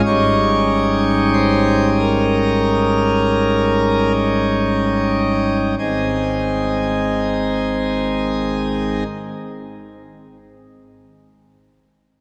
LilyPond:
<<
  \new Staff \with { instrumentName = "Pipe organ" } { \time 4/4 \key aes \major \tempo 4 = 37 des''4 c''8 bes'4. r4 | <aes, ees c' ees' aes'>1 | }
  \new Staff \with { instrumentName = "Pipe organ" } { \clef bass \time 4/4 \key aes \major <aes,, aes, g des' ees'>1 | aes,,1 | }
>>